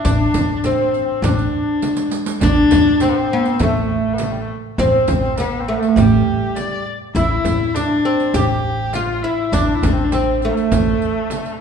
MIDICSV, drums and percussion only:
0, 0, Header, 1, 4, 480
1, 0, Start_track
1, 0, Tempo, 592300
1, 41, Time_signature, 4, 2, 24, 8
1, 9406, End_track
2, 0, Start_track
2, 0, Title_t, "Frame drum"
2, 36, Note_on_c, 9, 64, 74
2, 117, Note_off_c, 9, 64, 0
2, 280, Note_on_c, 9, 64, 80
2, 361, Note_off_c, 9, 64, 0
2, 523, Note_on_c, 9, 64, 72
2, 604, Note_off_c, 9, 64, 0
2, 1005, Note_on_c, 9, 64, 91
2, 1086, Note_off_c, 9, 64, 0
2, 1482, Note_on_c, 9, 64, 69
2, 1563, Note_off_c, 9, 64, 0
2, 1963, Note_on_c, 9, 64, 90
2, 2044, Note_off_c, 9, 64, 0
2, 2204, Note_on_c, 9, 64, 93
2, 2285, Note_off_c, 9, 64, 0
2, 2443, Note_on_c, 9, 64, 64
2, 2524, Note_off_c, 9, 64, 0
2, 2920, Note_on_c, 9, 64, 85
2, 3001, Note_off_c, 9, 64, 0
2, 3401, Note_on_c, 9, 64, 67
2, 3482, Note_off_c, 9, 64, 0
2, 3877, Note_on_c, 9, 64, 89
2, 3958, Note_off_c, 9, 64, 0
2, 4118, Note_on_c, 9, 64, 91
2, 4199, Note_off_c, 9, 64, 0
2, 4361, Note_on_c, 9, 64, 70
2, 4442, Note_off_c, 9, 64, 0
2, 4840, Note_on_c, 9, 64, 85
2, 4921, Note_off_c, 9, 64, 0
2, 5324, Note_on_c, 9, 64, 56
2, 5405, Note_off_c, 9, 64, 0
2, 5801, Note_on_c, 9, 64, 75
2, 5882, Note_off_c, 9, 64, 0
2, 6035, Note_on_c, 9, 64, 78
2, 6116, Note_off_c, 9, 64, 0
2, 6279, Note_on_c, 9, 64, 60
2, 6360, Note_off_c, 9, 64, 0
2, 6761, Note_on_c, 9, 64, 82
2, 6842, Note_off_c, 9, 64, 0
2, 7238, Note_on_c, 9, 64, 60
2, 7319, Note_off_c, 9, 64, 0
2, 7724, Note_on_c, 9, 64, 75
2, 7805, Note_off_c, 9, 64, 0
2, 7969, Note_on_c, 9, 64, 86
2, 8050, Note_off_c, 9, 64, 0
2, 8204, Note_on_c, 9, 64, 65
2, 8285, Note_off_c, 9, 64, 0
2, 8685, Note_on_c, 9, 64, 90
2, 8766, Note_off_c, 9, 64, 0
2, 9159, Note_on_c, 9, 64, 65
2, 9240, Note_off_c, 9, 64, 0
2, 9406, End_track
3, 0, Start_track
3, 0, Title_t, "Riq"
3, 40, Note_on_c, 9, 54, 63
3, 121, Note_off_c, 9, 54, 0
3, 277, Note_on_c, 9, 54, 62
3, 358, Note_off_c, 9, 54, 0
3, 518, Note_on_c, 9, 54, 52
3, 599, Note_off_c, 9, 54, 0
3, 763, Note_on_c, 9, 54, 17
3, 844, Note_off_c, 9, 54, 0
3, 1001, Note_on_c, 9, 54, 60
3, 1083, Note_off_c, 9, 54, 0
3, 1124, Note_on_c, 9, 54, 20
3, 1205, Note_off_c, 9, 54, 0
3, 1478, Note_on_c, 9, 54, 54
3, 1559, Note_off_c, 9, 54, 0
3, 1593, Note_on_c, 9, 54, 67
3, 1674, Note_off_c, 9, 54, 0
3, 1714, Note_on_c, 9, 54, 73
3, 1795, Note_off_c, 9, 54, 0
3, 1834, Note_on_c, 9, 54, 92
3, 1915, Note_off_c, 9, 54, 0
3, 1955, Note_on_c, 9, 54, 72
3, 2036, Note_off_c, 9, 54, 0
3, 2195, Note_on_c, 9, 54, 74
3, 2276, Note_off_c, 9, 54, 0
3, 2434, Note_on_c, 9, 54, 51
3, 2515, Note_off_c, 9, 54, 0
3, 2799, Note_on_c, 9, 54, 19
3, 2880, Note_off_c, 9, 54, 0
3, 2913, Note_on_c, 9, 54, 62
3, 2994, Note_off_c, 9, 54, 0
3, 3390, Note_on_c, 9, 54, 51
3, 3471, Note_off_c, 9, 54, 0
3, 3879, Note_on_c, 9, 54, 55
3, 3960, Note_off_c, 9, 54, 0
3, 4114, Note_on_c, 9, 54, 53
3, 4195, Note_off_c, 9, 54, 0
3, 4356, Note_on_c, 9, 54, 50
3, 4437, Note_off_c, 9, 54, 0
3, 4721, Note_on_c, 9, 54, 20
3, 4802, Note_off_c, 9, 54, 0
3, 4840, Note_on_c, 9, 54, 52
3, 4921, Note_off_c, 9, 54, 0
3, 5319, Note_on_c, 9, 54, 49
3, 5400, Note_off_c, 9, 54, 0
3, 5799, Note_on_c, 9, 54, 57
3, 5880, Note_off_c, 9, 54, 0
3, 6040, Note_on_c, 9, 54, 60
3, 6121, Note_off_c, 9, 54, 0
3, 6286, Note_on_c, 9, 54, 53
3, 6367, Note_off_c, 9, 54, 0
3, 6643, Note_on_c, 9, 54, 19
3, 6724, Note_off_c, 9, 54, 0
3, 6760, Note_on_c, 9, 54, 64
3, 6841, Note_off_c, 9, 54, 0
3, 7241, Note_on_c, 9, 54, 50
3, 7322, Note_off_c, 9, 54, 0
3, 7726, Note_on_c, 9, 54, 71
3, 7807, Note_off_c, 9, 54, 0
3, 7969, Note_on_c, 9, 54, 72
3, 8050, Note_off_c, 9, 54, 0
3, 8203, Note_on_c, 9, 54, 53
3, 8284, Note_off_c, 9, 54, 0
3, 8445, Note_on_c, 9, 54, 17
3, 8526, Note_off_c, 9, 54, 0
3, 8567, Note_on_c, 9, 54, 19
3, 8648, Note_off_c, 9, 54, 0
3, 8687, Note_on_c, 9, 54, 62
3, 8768, Note_off_c, 9, 54, 0
3, 8930, Note_on_c, 9, 54, 18
3, 9011, Note_off_c, 9, 54, 0
3, 9164, Note_on_c, 9, 54, 49
3, 9245, Note_off_c, 9, 54, 0
3, 9285, Note_on_c, 9, 54, 18
3, 9366, Note_off_c, 9, 54, 0
3, 9406, End_track
4, 0, Start_track
4, 0, Title_t, "Tombak"
4, 41, Note_on_c, 9, 64, 91
4, 122, Note_off_c, 9, 64, 0
4, 279, Note_on_c, 9, 64, 89
4, 360, Note_off_c, 9, 64, 0
4, 530, Note_on_c, 9, 63, 71
4, 612, Note_off_c, 9, 63, 0
4, 769, Note_on_c, 9, 62, 26
4, 850, Note_off_c, 9, 62, 0
4, 892, Note_on_c, 9, 62, 26
4, 973, Note_off_c, 9, 62, 0
4, 1006, Note_on_c, 9, 64, 90
4, 1087, Note_off_c, 9, 64, 0
4, 1129, Note_on_c, 9, 62, 24
4, 1210, Note_off_c, 9, 62, 0
4, 1246, Note_on_c, 9, 62, 24
4, 1327, Note_off_c, 9, 62, 0
4, 1485, Note_on_c, 9, 63, 64
4, 1566, Note_off_c, 9, 63, 0
4, 1848, Note_on_c, 9, 62, 23
4, 1929, Note_off_c, 9, 62, 0
4, 1965, Note_on_c, 9, 64, 97
4, 2046, Note_off_c, 9, 64, 0
4, 2200, Note_on_c, 9, 64, 91
4, 2281, Note_off_c, 9, 64, 0
4, 2435, Note_on_c, 9, 63, 57
4, 2517, Note_off_c, 9, 63, 0
4, 2679, Note_on_c, 9, 62, 26
4, 2760, Note_off_c, 9, 62, 0
4, 2797, Note_on_c, 9, 62, 26
4, 2878, Note_off_c, 9, 62, 0
4, 2921, Note_on_c, 9, 64, 91
4, 3002, Note_off_c, 9, 64, 0
4, 3039, Note_on_c, 9, 62, 24
4, 3120, Note_off_c, 9, 62, 0
4, 3163, Note_on_c, 9, 62, 26
4, 3244, Note_off_c, 9, 62, 0
4, 3401, Note_on_c, 9, 63, 61
4, 3482, Note_off_c, 9, 63, 0
4, 3877, Note_on_c, 9, 64, 82
4, 3958, Note_off_c, 9, 64, 0
4, 4117, Note_on_c, 9, 64, 88
4, 4199, Note_off_c, 9, 64, 0
4, 4364, Note_on_c, 9, 63, 60
4, 4445, Note_off_c, 9, 63, 0
4, 4604, Note_on_c, 9, 62, 26
4, 4685, Note_off_c, 9, 62, 0
4, 4842, Note_on_c, 9, 64, 87
4, 4923, Note_off_c, 9, 64, 0
4, 4966, Note_on_c, 9, 62, 28
4, 5047, Note_off_c, 9, 62, 0
4, 5084, Note_on_c, 9, 62, 27
4, 5165, Note_off_c, 9, 62, 0
4, 5325, Note_on_c, 9, 63, 64
4, 5406, Note_off_c, 9, 63, 0
4, 5804, Note_on_c, 9, 64, 88
4, 5885, Note_off_c, 9, 64, 0
4, 6043, Note_on_c, 9, 64, 96
4, 6124, Note_off_c, 9, 64, 0
4, 6289, Note_on_c, 9, 63, 71
4, 6370, Note_off_c, 9, 63, 0
4, 6528, Note_on_c, 9, 62, 27
4, 6609, Note_off_c, 9, 62, 0
4, 6647, Note_on_c, 9, 62, 26
4, 6728, Note_off_c, 9, 62, 0
4, 6761, Note_on_c, 9, 64, 95
4, 6842, Note_off_c, 9, 64, 0
4, 6883, Note_on_c, 9, 62, 29
4, 6964, Note_off_c, 9, 62, 0
4, 7003, Note_on_c, 9, 62, 27
4, 7084, Note_off_c, 9, 62, 0
4, 7238, Note_on_c, 9, 63, 74
4, 7319, Note_off_c, 9, 63, 0
4, 7721, Note_on_c, 9, 64, 86
4, 7802, Note_off_c, 9, 64, 0
4, 7966, Note_on_c, 9, 64, 87
4, 8047, Note_off_c, 9, 64, 0
4, 8208, Note_on_c, 9, 63, 68
4, 8289, Note_off_c, 9, 63, 0
4, 8451, Note_on_c, 9, 62, 26
4, 8532, Note_off_c, 9, 62, 0
4, 8565, Note_on_c, 9, 62, 26
4, 8646, Note_off_c, 9, 62, 0
4, 8690, Note_on_c, 9, 64, 79
4, 8771, Note_off_c, 9, 64, 0
4, 8807, Note_on_c, 9, 62, 25
4, 8888, Note_off_c, 9, 62, 0
4, 8933, Note_on_c, 9, 62, 27
4, 9014, Note_off_c, 9, 62, 0
4, 9173, Note_on_c, 9, 63, 74
4, 9254, Note_off_c, 9, 63, 0
4, 9298, Note_on_c, 9, 62, 25
4, 9379, Note_off_c, 9, 62, 0
4, 9406, End_track
0, 0, End_of_file